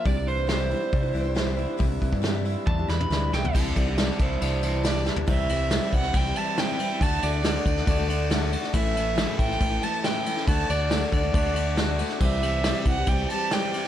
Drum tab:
CC |----------------|----------------|x-x-x-x-x-x-x---|x---------------|
RD |----------------|----------------|----------------|--x-x-x-x-x-x-x-|
HH |o-o-o-o-o-o-o-o-|o-o-o-o---------|----------------|----------------|
SD |----o-------o---|----o-----o-o-o-|----o-------o-o-|----o--o----o---|
T1 |----------------|--------o-------|----------------|----------------|
T2 |----------------|-----------o----|----------------|----------------|
FT |----------------|---------------o|---------------o|----------------|
BD |o-------o-------|o-oo----o-------|o-o---o---------|o-----o-o-------|

CC |----------------|----------------|----------------|x---------------|
RD |x-x-x-x-x-x-x-x-|x-x-x-x-x-x-x-x-|x-x-x-x-x-x-x-x-|--x-x-x-x-x-x-x-|
HH |----------------|----------------|----------------|----------------|
SD |----o--o----o--o|----o--o----o--o|----o-------o--o|----o-------o--o|
T1 |----------------|----------------|----------------|----------------|
T2 |----------------|----------------|----------------|----------------|
FT |----------------|----------------|----------------|----------------|
BD |o-----o-o-------|o-----o-o-------|o-----o-o-------|o-----o-o-------|